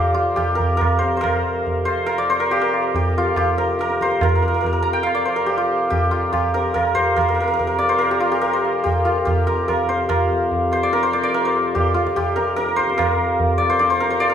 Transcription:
Already playing: harmonium F2 C3, santur F4 G4 A#4 C5 D5 F5
0.14 santur F4
0.36 santur G4, tabla na, tabla ge
0.55 santur A#4, tabla ge
0.77 santur A#4
0.81 tabla na, tabla ge
0.99 santur C5, tabla te
1.17 santur A#4 C5
1.24 tabla na, tabla ge
1.67 tabla tin, tabla ge
1.85 santur C5, tabla na
2.06 santur A#4, tabla na
2.18 santur D5
2.30 santur C5
2.40 santur A#4
2.51 santur G4, tabla tin
2.62 santur A#4
2.74 tabla na
2.95 santur G4, tabla tin, tabla ge
3.18 santur F4
3.36 santur G4, tabla na, tabla ge
3.58 santur A#4, tabla te
3.79 santur A#4, tabla te
3.90 tabla te
4.01 santur C5, tabla ke
4.11 tabla te
4.21 santur A#4, tabla na, tabla ge
4.29 santur A#4
4.35 santur A#4
4.42 santur A#4
4.48 santur A#4
4.54 santur A#4
4.61 santur A#4, tabla tin, tabla ge
4.66 santur A#4
4.73 santur A#4
4.83 santur A#5
4.93 santur G5
5.03 santur F5, tabla na
5.15 santur D5
5.25 santur C5, tabla na
5.36 santur A#4
5.46 santur G4, tabla tin
5.58 santur F4
5.90 santur G4, tabla tin, tabla ge
6.11 santur F4, tabla na
6.33 santur G4, tabla na, tabla ge
6.54 santur A#4, tabla te
6.74 santur A#4, tabla na, tabla ge
6.95 santur C5, tabla ge
7.16 santur A#4, tabla na, tabla ge
7.21 santur A#4
7.29 santur A#4
7.34 santur A#4
7.40 santur A#4
7.48 santur A#4
7.54 santur A#4
7.59 santur A#4, tabla tin, tabla ge
7.67 santur A#4
7.79 santur D5, tabla na
7.89 santur C5
7.98 santur A#4, tabla na
8.11 santur G4
8.20 santur F4, tabla na
8.32 santur G4
8.41 santur A#4, tabla tin
8.53 santur C5
8.65 tabla na
8.84 santur G4, tabla tin, tabla ge
9.05 santur F4, tabla na
9.25 santur G4, tabla na, tabla ge
9.47 santur A#4, tabla te
9.68 santur A#4, tabla na, tabla ge
9.89 santur C5, tabla te
10.09 harmonium F2 C3, santur A#4, tabla na, tabla ge
10.51 tabla tin, tabla ge
10.72 santur C5, tabla na
10.83 santur D5
10.93 santur A#4, tabla te
11.03 santur C5
11.13 santur D5, tabla te
11.23 santur D5
11.34 santur A#4, tabla tin
11.45 santur C5
11.56 tabla na
11.75 santur G4, tabla tin, tabla ge
11.94 santur F4, tabla na
12.07 tabla ke
12.16 santur G4, tabla na, tabla ge
12.36 santur A#4, tabla te
12.56 santur A#4, tabla te
12.69 tabla te
12.76 santur C5, tabla ke
12.89 tabla te
12.98 santur A#4, tabla na, tabla ge
13.40 tabla tin, tabla ge
13.58 santur D5, tabla na
13.70 santur C5, tabla ke
13.79 santur D5, tabla te
13.90 santur C5
14.00 santur A#4, tabla te
14.10 santur C5
14.20 santur D5, tabla tin
14.30 santur A#4

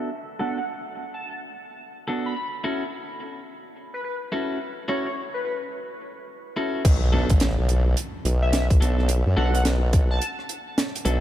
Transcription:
0.39 clean electric guitar B3 D4 F#4 A4, analog synth lead F#5
0.58 analog synth lead F#5
1.14 analog synth lead A5
2.08 clean electric guitar B3 D4 F#4 A4
2.26 analog synth lead B5
2.36 analog synth lead B5
2.64 clean electric guitar C#4 E4 F#4 A4
3.94 analog synth lead B4
4.04 analog synth lead B4
4.32 clean electric guitar C#4 E4 F#4 A4
4.88 clean electric guitar C#4 E4 F#4 A4, analog synth lead C#5
5.06 analog synth lead C#5
5.34 analog synth lead B4
5.45 analog synth lead B4
6.56 clean electric guitar C#4 E4 F#4 A4
6.85 wobble bass B1, kick, closed hi-hat, crash, impact
7.12 clean electric guitar B3 D4 F#4 A4
7.29 wobble bass A1, kick, closed hi-hat
7.40 snare, closed hi-hat
7.59 wobble bass B1
7.69 closed hi-hat
7.97 closed hi-hat
8.25 wobble bass B1, closed hi-hat
8.42 analog synth lead E5
8.53 analog synth lead E5, snare, closed hi-hat
8.70 kick, closed hi-hat
8.81 wobble bass B1, clean electric guitar B3 D4 F#4 A4, closed hi-hat
8.99 cross-stick
9.09 closed hi-hat
9.26 wobble bass F#2
9.37 wobble bass B1, clean electric guitar B3 D4 F#4 A4, analog synth lead F#5
9.55 analog synth lead F#5, closed hi-hat
9.65 snare, closed hi-hat
9.93 kick, closed hi-hat
10.11 analog synth lead A5
10.22 closed hi-hat
10.39 cross-stick
10.49 closed hi-hat
10.78 snare, closed hi-hat
10.96 closed hi-hat
11.05 wobble bass B1, clean electric guitar B3 D4 F#4 A4, closed hi-hat

